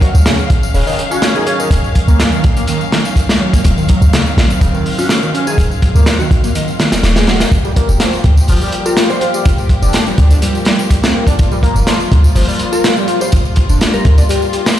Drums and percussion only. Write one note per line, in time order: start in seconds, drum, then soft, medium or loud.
0.01 kick medium
0.01 closed hi-hat medium
0.15 tambourine medium
0.26 snare loud
0.26 closed hi-hat medium
0.26 tambourine medium
0.39 tambourine soft
0.50 kick medium
0.50 closed hi-hat medium
0.63 tambourine medium
0.74 open hi-hat medium
0.74 tambourine medium
0.87 tambourine soft
0.99 closed hi-hat medium
1.11 tambourine medium
1.22 snare loud
1.22 closed hi-hat medium
1.22 tambourine medium
1.36 tambourine soft
1.47 closed hi-hat medium
1.60 tambourine medium
1.71 kick loud
1.71 closed hi-hat medium
1.71 tambourine soft
1.84 tambourine soft
1.95 kick medium
1.95 closed hi-hat medium
2.08 tambourine medium
2.20 snare loud
2.20 closed hi-hat medium
2.20 tambourine soft
2.32 tambourine soft
2.44 kick medium
2.44 closed hi-hat medium
2.57 closed hi-hat soft
2.57 tambourine medium
2.67 closed hi-hat medium
2.67 tambourine soft
2.81 tambourine soft
2.92 snare loud
2.92 closed hi-hat medium
3.05 tambourine medium
3.16 kick medium
3.16 closed hi-hat medium
3.16 tambourine soft
3.29 snare medium
3.29 closed hi-hat medium
3.29 tambourine soft
3.53 kick medium
3.53 closed hi-hat medium
3.53 tambourine medium
3.64 kick loud
3.64 closed hi-hat medium
3.64 tambourine medium
3.78 tambourine soft
3.89 kick medium
3.89 closed hi-hat medium
4.02 tambourine medium
4.13 snare loud
4.13 closed hi-hat medium
4.13 tambourine soft
4.26 tambourine soft
4.38 snare loud
4.38 closed hi-hat medium
4.50 tambourine medium
4.61 kick medium
4.61 closed hi-hat medium
4.61 tambourine medium
4.74 tambourine soft
4.86 open hi-hat medium
4.99 tambourine medium
5.09 snare loud
5.09 closed hi-hat medium
5.09 tambourine soft
5.23 tambourine soft
5.35 closed hi-hat medium
5.47 tambourine medium
5.58 kick loud
5.58 closed hi-hat medium
5.58 tambourine medium
5.71 tambourine soft
5.82 kick loud
5.82 closed hi-hat medium
5.96 tambourine medium
6.06 snare loud
6.06 closed hi-hat medium
6.06 tambourine medium
6.20 tambourine soft
6.31 kick medium
6.31 closed hi-hat medium
6.44 closed hi-hat soft
6.44 tambourine medium
6.55 closed hi-hat medium
6.55 tambourine medium
6.68 tambourine soft
6.80 snare medium
6.80 closed hi-hat medium
6.92 snare medium
6.92 closed hi-hat medium
6.92 tambourine medium
7.03 snare loud
7.03 closed hi-hat medium
7.03 tambourine medium
7.16 snare loud
7.16 closed hi-hat medium
7.16 tambourine soft
7.27 snare loud
7.27 closed hi-hat medium
7.40 snare medium
7.40 closed hi-hat medium
7.40 tambourine medium
7.52 kick loud
7.52 closed hi-hat medium
7.52 tambourine medium
7.65 tambourine soft
7.76 kick loud
7.76 closed hi-hat medium
7.89 tambourine medium
8.00 snare loud
8.00 closed hi-hat medium
8.00 tambourine medium
8.13 tambourine soft
8.24 kick medium
8.24 closed hi-hat medium
8.37 tambourine medium
8.48 open hi-hat medium
8.48 tambourine medium
8.61 tambourine soft
8.72 closed hi-hat medium
8.86 tambourine medium
8.97 snare loud
8.97 closed hi-hat loud
8.97 tambourine medium
9.10 tambourine soft
9.21 closed hi-hat medium
9.34 tambourine medium
9.45 kick loud
9.45 closed hi-hat medium
9.45 tambourine medium
9.58 tambourine soft
9.69 kick medium
9.69 closed hi-hat medium
9.82 tambourine medium
9.93 snare loud
9.93 closed hi-hat medium
9.93 tambourine medium
10.07 tambourine soft
10.18 kick medium
10.18 closed hi-hat medium
10.30 closed hi-hat soft
10.30 tambourine medium
10.42 closed hi-hat medium
10.42 tambourine medium
10.55 tambourine soft
10.65 snare loud
10.65 closed hi-hat medium
10.79 tambourine medium
10.90 kick medium
10.90 closed hi-hat medium
10.90 tambourine medium
11.03 snare loud
11.03 closed hi-hat medium
11.03 tambourine soft
11.27 kick medium
11.27 closed hi-hat medium
11.27 tambourine medium
11.39 kick loud
11.39 closed hi-hat medium
11.39 tambourine medium
11.51 tambourine soft
11.63 kick loud
11.63 closed hi-hat medium
11.76 tambourine medium
11.87 snare loud
11.87 closed hi-hat medium
11.87 tambourine medium
12.00 tambourine soft
12.12 kick loud
12.12 closed hi-hat medium
12.24 tambourine medium
12.35 open hi-hat medium
12.35 tambourine medium
12.49 tambourine soft
12.59 closed hi-hat medium
12.73 tambourine medium
12.84 snare loud
12.84 closed hi-hat medium
12.84 tambourine medium
12.97 tambourine soft
13.08 closed hi-hat medium
13.21 tambourine medium
13.32 kick loud
13.32 closed hi-hat medium
13.32 tambourine medium
13.45 tambourine soft
13.56 kick medium
13.56 closed hi-hat medium
13.69 tambourine medium
13.81 snare loud
13.81 closed hi-hat medium
13.81 tambourine medium
13.94 tambourine soft
14.05 kick loud
14.05 closed hi-hat medium
14.18 closed hi-hat soft
14.18 tambourine medium
14.29 closed hi-hat medium
14.29 tambourine medium
14.42 tambourine soft
14.53 closed hi-hat medium
14.66 snare loud
14.66 tambourine medium